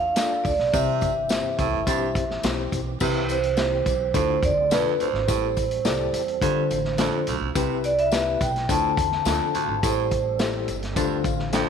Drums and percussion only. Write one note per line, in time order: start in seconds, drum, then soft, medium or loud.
0.16 snare medium
0.16 closed hi-hat medium
0.16 tambourine loud
0.45 kick medium
0.45 open hi-hat medium
0.45 tambourine medium
0.59 snare soft
0.73 kick loud
0.73 closed hi-hat medium
0.73 tambourine loud
1.01 kick medium
1.01 closed hi-hat medium
1.01 tambourine medium
1.29 snare medium
1.29 closed hi-hat medium
1.29 tambourine medium
1.58 kick medium
1.58 closed hi-hat medium
1.58 tambourine medium
1.87 kick medium
1.87 closed hi-hat medium
1.87 tambourine medium
2.15 kick medium
2.15 closed hi-hat medium
2.15 tambourine soft
2.30 snare soft
2.43 snare loud
2.43 closed hi-hat medium
2.43 tambourine medium
2.72 kick medium
2.72 closed hi-hat medium
2.72 tambourine soft
3.00 kick medium
3.00 crash medium
3.00 tambourine medium
3.29 closed hi-hat medium
3.29 tambourine medium
3.43 closed hi-hat medium
3.57 snare medium
3.57 closed hi-hat medium
3.57 tambourine medium
3.86 kick medium
3.86 closed hi-hat medium
3.86 tambourine medium
4.14 kick medium
4.14 closed hi-hat medium
4.14 tambourine medium
4.43 kick loud
4.43 closed hi-hat medium
4.43 tambourine medium
4.71 snare loud
4.71 closed hi-hat medium
4.71 tambourine loud
5.00 closed hi-hat medium
5.00 tambourine medium
5.14 snare soft
5.28 kick loud
5.28 closed hi-hat medium
5.28 tambourine loud
5.57 kick medium
5.57 closed hi-hat medium
5.57 tambourine medium
5.71 closed hi-hat medium
5.85 snare medium
5.85 closed hi-hat medium
5.85 tambourine medium
6.14 closed hi-hat medium
6.14 tambourine medium
6.28 closed hi-hat soft
6.42 kick medium
6.42 closed hi-hat loud
6.42 tambourine loud
6.70 closed hi-hat medium
6.70 tambourine soft
6.85 snare soft
6.98 snare loud
6.98 closed hi-hat medium
6.98 tambourine medium
7.27 closed hi-hat medium
7.27 tambourine soft
7.55 kick loud
7.55 closed hi-hat medium
7.55 tambourine loud
7.84 closed hi-hat medium
7.84 tambourine medium
7.98 closed hi-hat medium
8.12 snare medium
8.12 closed hi-hat medium
8.12 tambourine medium
8.41 kick loud
8.41 closed hi-hat medium
8.41 tambourine medium
8.56 snare soft
8.56 closed hi-hat soft
8.69 kick loud
8.69 closed hi-hat loud
8.69 tambourine medium
8.97 kick loud
8.97 closed hi-hat medium
8.97 tambourine medium
9.12 snare soft
9.25 snare loud
9.25 closed hi-hat medium
9.25 tambourine loud
9.54 closed hi-hat medium
9.54 tambourine medium
9.83 kick loud
9.83 closed hi-hat medium
9.83 tambourine loud
10.11 kick medium
10.11 closed hi-hat medium
10.11 tambourine medium
10.39 snare loud
10.39 closed hi-hat medium
10.39 tambourine medium
10.68 closed hi-hat medium
10.68 tambourine medium
10.82 snare soft
10.82 closed hi-hat soft
10.96 kick medium
10.96 closed hi-hat loud
10.96 tambourine medium
11.24 kick medium
11.24 closed hi-hat medium
11.24 tambourine medium
11.39 snare soft
11.52 snare loud
11.52 closed hi-hat medium
11.52 tambourine loud